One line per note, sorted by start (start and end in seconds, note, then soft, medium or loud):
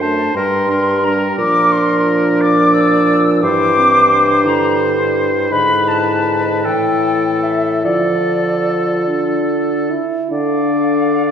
0.00 0.23 F#2 soft
0.00 0.34 A3 soft
0.00 0.34 D4 soft
0.00 0.35 C5 soft
0.00 0.36 A5 medium
0.34 1.26 G2 soft
0.34 0.68 G3 soft
0.34 0.68 D4 soft
0.34 0.69 A#4 soft
0.34 1.05 C6 medium
0.69 1.03 G3 soft
0.69 1.03 D4 soft
0.69 1.04 A#4 soft
1.04 1.38 G3 soft
1.04 1.38 D4 soft
1.04 1.38 A#4 soft
1.04 1.38 A#5 medium
1.38 3.39 A#2 medium
1.38 3.43 F3 soft
1.38 3.45 D4 medium
1.38 2.43 A#4 soft
1.38 1.73 D6 medium
1.72 2.16 C6 medium
2.41 3.27 D5 medium
2.41 2.75 D6 medium
2.74 3.43 E6 medium
3.42 5.47 G2 medium
3.42 4.46 E3 soft
3.42 3.79 E4 medium
3.42 5.54 C5 medium
3.42 4.44 D6 medium
3.77 4.12 C4 soft
4.11 4.47 D4 medium
4.44 5.33 D3 medium
4.44 7.86 E4 medium
4.44 4.79 A#5 medium
5.50 6.65 G#2 medium
5.50 6.67 D3 soft
5.50 6.67 B4 soft
5.50 5.89 B5 medium
5.88 6.67 A5 medium
6.64 7.84 A2 soft
6.64 7.86 E3 soft
6.64 7.84 A4 soft
6.64 7.44 G5 medium
7.43 7.83 E5 medium
7.83 9.92 D3 soft
7.83 9.06 F3 soft
7.83 9.96 F4 soft
7.83 9.92 A4 soft
7.83 9.05 D5 medium
9.07 9.92 D4 medium
9.91 10.31 E4 medium
10.31 11.31 D3 soft
10.31 11.31 D4 medium
10.31 11.31 A4 soft
10.31 11.31 D5 soft
10.31 11.31 F5 soft